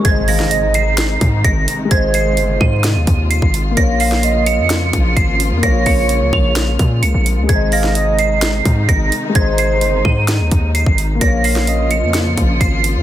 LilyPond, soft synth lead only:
\new Staff \with { instrumentName = "Soft synth lead" } { \time 4/4 \key aes \major \tempo 4 = 129 r8 f''8 ees''4 r2 | c''2 r2 | r8 f''8 ees''4 r2 | des''2 r2 |
r8 f''8 ees''4 r2 | c''2 r2 | r8 f''8 ees''4 r2 | }